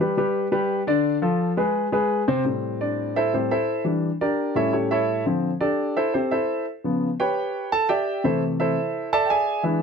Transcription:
0.01 G3 G4 B4
0.17 G3 G4 B4
0.52 G3 G4 B4
0.87 D3 D4 D5
1.22 F3 F4 A4
1.57 G#3 G#4 B4
1.92 G#3 G#4 B4
2.28 C3 C4 C5
2.44 A2 G3 C4
2.81 D4 D5
3.16 E4 A4 C5 E5
3.33 A2 G3 C4 G4 A4 C5
3.51 E4 A4 C5 E5
3.84 E3 G3 D4
4.21 D4 G4 A#4 D5
4.55 A2 G3 C#4 E4 A4 C#5 E5
4.73 C#4 G4 A4 C#5
4.91 E4 A4 C#5 E5
5.25 D3 F3 C4
5.61 D4 G4 A4 D5
5.97 E4 A4 C5 E5
6.14 C4 G4 A4 C5
6.31 E4 A4 C5 E5
6.84 C#3 F3 B3
7.20 G4 B4 C#5 G5
7.72 A4 A5
7.89 G4 D5 E5 G5
8.24 C3 E3 A3 E4 A4 C5 E5
8.60 E4 A4 C5 E5
9.13 A4 D5 E5 A5
9.25 G5
9.30 G#4 D5 E5 G#5
9.63 E3 G#3 D4 E4 G#4 B4 E5

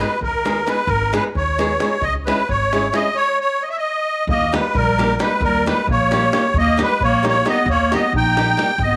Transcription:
0.00 G#3 B3 D#4 G#4 B4
0.21 D#2 A#4, davul low
0.45 G#3 B3 D#4 G#4, davul high
0.57 davul high
0.66 G#3 B3 D#4 G#4 B4, davul high
0.87 G#1 A#4, davul low
1.02 davul high
1.13 G#3 B3 D#4 G#4 B4, davul high
1.35 D#2 C#5, davul low
1.58 G#3 B3 D#4 G#4, davul high
1.71 davul high
1.80 G#3 B3 D#4 G#4, davul high
2.01 C#2 D#5, davul low
2.15 davul high
2.26 G#3 C#4 E4 G#4 B4, davul high
2.49 G#1 C#5, davul low
2.72 G#3 C#4 E4 G#4, davul high
2.83 davul high
2.93 G#3 C#4 E4 G#4 D#5, davul high
3.15 C#5
3.41 C#5
3.62 D#5
3.70 E5
3.77 D#5
4.27 D#2 A#3 D#5, davul low
4.42 davul high
4.52 G3 G#3 A#3 D#4 G4 B4, davul high
4.74 A#1 G3 A#4, davul low
4.98 G3 A#3 D#4 G4, davul high
5.10 davul high
5.19 G3 G#3 A#3 D#4 G4 B4, davul high
5.40 D#2 G3 A#4, davul low
5.54 davul high
5.66 G3 G#3 A#3 D#4 G4 B4, davul high
5.87 A#1 A#3 C#5, davul low
6.11 G3 A#3 D#4 G4, davul high
6.32 G3 A#3 D#4 G4, davul high
6.54 D#2 A#3, davul low
6.58 D#5
6.67 davul high
6.77 G3 A#3 D#4 G4, davul high
6.81 G#3 B4
7.00 A#1 C#5, davul low
7.04 A#3
7.23 G3 A#3 D#4 G4, davul high
7.27 A#3 C#5
7.35 davul high
7.45 G3 A#3 B3 D#4 G4 D#5, davul high
7.66 D#2, davul low
7.70 A#3 C#5
7.92 G3 A#3 B3 D#4 G4 D#5, davul high
8.12 A#1 D#4, davul low
8.17 G5
8.37 G3 A#3 D#4 G4, davul high
8.57 G3 A#3 D#4 G4, davul high
8.78 G#1 D#5, davul low
8.83 B3
8.91 davul high

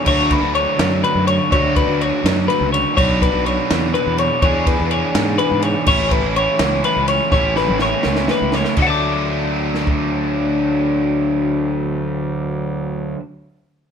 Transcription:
0.05 D2 D3 F#3 A3 D4 F#4 C#5, kick, crash
0.31 B4, kick, ride
0.43 D2
0.55 C#5, ride
0.79 F#2, snare, ride
1.04 B4, ride
1.15 F#2
1.27 C#5, ride
1.50 D2 D3 F#3 A3 D4 F#4 C#5, kick, ride
1.76 B4, kick, ride
1.88 D2
2.01 C#5, ride
2.24 F#2, snare, ride
2.48 B4, ride
2.61 C#2
2.72 C#5, ride
2.95 B1 B2 F#3 B3 D4 F#4 C#5, kick, crash
3.22 B4, kick, ride
3.34 B1
3.45 C#5, ride
3.71 E2, snare, ride
3.94 B4, ride
4.07 E2
4.18 C#5, ride
4.41 E2 E3 B3 D4 G#4 C#5, kick, ride
4.67 B4, kick, ride
4.81 E2
4.91 C#5, ride
5.15 G#2, snare, ride
5.38 B4, ride
5.51 G#2
5.62 C#5, ride
5.86 A1 A2 E3 A3 C#4 E4 C#5, kick, crash
6.11 B4, kick, ride
6.24 A1
6.36 C#5, ride
6.59 C#2, snare, ride
6.84 B4, ride
6.96 C#2
7.08 C#5, ride
7.31 A1 A2 E3 A3 C#4 E4 C#5, kick, snare
7.56 B4, snare
7.68 A1, mid tom
7.79 C#5, snare
8.03 C#2, snare
8.16 snare
8.28 B4, snare
8.42 C#2
8.52 C#5, snare
8.65 snare
8.77 D2 D3 F#3 A3 D5, kick, crash
8.81 D4 F#5
8.87 A5 D6
9.75 snare
9.87 kick

